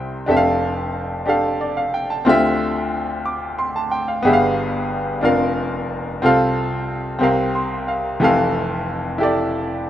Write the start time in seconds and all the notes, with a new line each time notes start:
Already playing: C2 C3 E4 G4 C5 G5
0.26 F1 F2 D4 G4 A4
0.31 E5
0.36 F5
1.26 D4 G4 A4 F5
1.61 D5
1.77 F5
1.94 G5
2.10 A5
2.25 D2 D3 C4 F4 G4
2.29 E5
3.26 D6
3.59 C6
3.76 A5
3.91 G5
4.08 F5
4.22 G1 G2 B3 G4 G#4
4.27 E5
4.33 F5
5.21 F1 F2 D4 F4 A#4 F5
6.22 C2 C3 C4 F4 A4 F5
7.19 C2 C3 C4 G4 A#4
7.23 F5
7.55 C6
7.88 F5
8.20 F1 F2 E3 G4 A4
8.24 F5
9.18 E4 G4 A4
9.23 D5